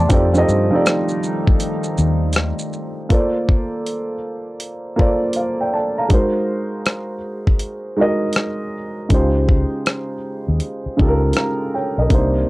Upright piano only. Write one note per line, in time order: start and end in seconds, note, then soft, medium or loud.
0.00 0.12 D5 medium
0.00 0.12 G5 medium
0.00 0.33 A5 medium
0.00 0.12 C6 medium
0.00 0.12 D6 medium
0.09 0.26 F3 medium
0.09 0.26 C4 medium
0.09 0.27 D#4 medium
0.09 0.27 G4 medium
0.09 0.28 A4 medium
0.14 0.28 D5 medium
0.33 0.55 F3 medium
0.33 0.56 C4 medium
0.33 0.56 D#4 medium
0.33 0.57 G4 medium
0.33 0.57 A4 medium
0.38 0.58 D#5 medium
0.70 1.69 F3 medium
0.70 1.69 C4 medium
0.70 1.70 D#4 medium
0.70 1.70 G4 medium
0.70 1.71 A4 medium
0.75 1.71 D5 medium
3.09 4.14 A#3 medium
3.09 4.14 F4 medium
3.09 4.15 A4 medium
3.09 4.16 C5 medium
3.14 4.16 D5 medium
4.96 5.73 A#3 medium
4.96 5.73 F4 medium
4.96 5.74 A4 medium
4.96 5.35 C5 medium
5.01 5.37 D5 medium
5.36 5.59 C5 soft
5.36 5.59 F5 medium
5.61 5.72 D5 medium
5.61 5.73 G5 medium
5.74 5.96 D5 medium
5.74 5.96 A5 medium
5.98 6.34 F5 soft
5.98 6.33 A#5 medium
6.09 7.14 G#3 medium
6.09 7.14 D#4 medium
6.09 7.15 F#4 medium
6.09 7.16 A#4 medium
6.14 7.16 C5 medium
7.97 8.73 G#3 medium
7.97 8.73 D#4 medium
7.97 8.74 F#4 medium
7.97 8.75 A#4 medium
8.01 8.75 D#5 medium
9.09 10.14 C#3 medium
9.09 10.15 G#3 medium
9.09 10.15 D#4 medium
9.09 10.15 F4 medium
9.13 10.16 G4 medium
9.13 10.16 C5 medium
10.97 11.73 C#3 medium
10.97 11.73 G#3 medium
10.97 11.74 D#4 medium
10.97 11.75 F4 medium
10.97 11.75 G4 medium
11.02 11.08 A4 medium
11.08 11.40 A#4 medium
11.37 11.72 F5 medium
11.37 11.71 A#5 medium
11.74 11.97 C#5 medium
11.74 11.96 G5 medium
11.98 12.34 A#4 medium
11.98 12.33 D#5 medium
12.09 12.49 C3 medium
12.09 12.49 A#3 medium
12.09 12.49 D4 medium
12.09 12.49 D#4 medium
12.14 12.49 C5 medium